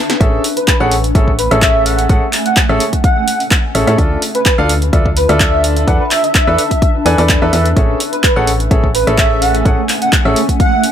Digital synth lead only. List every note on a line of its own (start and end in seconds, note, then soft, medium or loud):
0.57 0.64 B4 medium
0.68 0.76 B4 medium
1.39 1.51 B4 medium
1.62 1.84 E5 medium
1.86 1.99 F#5 medium
2.46 2.57 F#5 medium
3.04 3.40 F#5 medium
4.35 4.42 B4 medium
4.46 4.54 B4 medium
5.17 5.29 B4 medium
5.40 5.62 E5 medium
6.00 6.09 B4 medium
6.11 6.21 E5 medium
6.24 6.90 E5 medium
8.13 8.20 B4 medium
8.24 8.32 B4 medium
8.95 9.07 B4 medium
9.18 9.40 E5 medium
9.42 9.55 F#5 medium
10.02 10.13 F#5 medium
10.60 10.92 F#5 medium